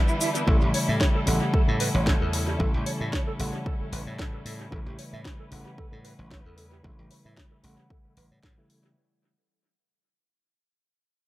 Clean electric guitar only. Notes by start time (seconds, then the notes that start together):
0.09 E4
0.21 E4
0.35 B3
0.47 A4
0.62 G4
0.74 C#5
0.88 E5
1.01 C#5
1.15 A4
1.28 A4
1.42 G4
1.54 A4
1.68 A4
1.80 B4
1.94 C#5
2.07 C#5
2.21 A4
2.33 A4
2.47 G4
2.60 A4
2.74 G4
2.86 C#5
3.00 E5
3.13 C#5
3.27 A4
3.39 A4
3.54 G4
3.66 A4
3.80 A4
3.93 B4
4.07 C#5
4.19 C#5
4.34 A4
4.46 A4
4.60 G4
4.73 A4
4.87 G4
4.99 C#5
5.13 E5
5.25 C#5
5.39 A4
5.52 A4
5.66 G4
5.78 A4
5.92 A4
6.04 B4
6.19 C#5
6.31 C#5
6.46 A4
6.58 A4
6.72 G4
6.84 A4
6.99 G4
7.11 C#5
7.25 E5
7.37 C#5
7.51 A4
7.64 A4
7.78 G4
7.91 A4
8.05 A4
8.17 B4
8.31 C#5
8.44 C#5
8.58 A4
8.70 A4
8.84 G4